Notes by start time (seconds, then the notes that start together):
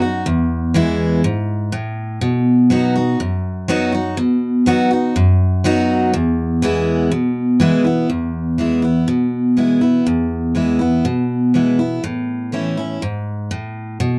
Already playing: F#2
0.02 D#4 F#4
0.26 E2
0.74 E3 G#3 B3 E4
1.24 G#2
1.72 A2
2.21 B2
2.70 F#3 B3 D#4 F#4
2.96 D#4 F#4
3.20 F#2
3.68 F#3 B3 D#4 F#4
3.92 D#4 F#4
4.17 B2
4.66 F#3 B3 D#4 F#4
4.91 D#4 F#4
5.16 F#2
5.64 F#3 B3 D#4 F#4
6.14 E2
6.62 E3 G#3 B3 E4
7.12 B2
7.60 E3 G#3 B3 E4
7.84 B3 E4
8.10 E2
8.58 E3 G#3 B3 E4
8.82 B3 E4
9.08 B2
9.57 E3 G#3 B3 E4
9.81 B3 E4
10.07 E2
10.55 E3 G#3 B3 E4
10.79 B3 E4
11.05 B2
11.54 E3 G#3 B3 E4
11.79 B3 E4
12.04 A2
12.52 E3 A3 C#4 E4
12.77 C#4 E4
13.02 G#2
13.51 A2
14.00 B2